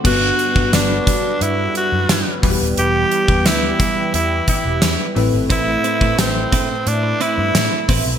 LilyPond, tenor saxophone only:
\new Staff \with { instrumentName = "Tenor saxophone" } { \time 4/4 \key g \major \tempo 4 = 88 fis'4 d'4 e'8 fis'4 r8 | g'4 e'4 e'8 e'4 r8 | e'4 c'4 d'8 e'4 r8 | }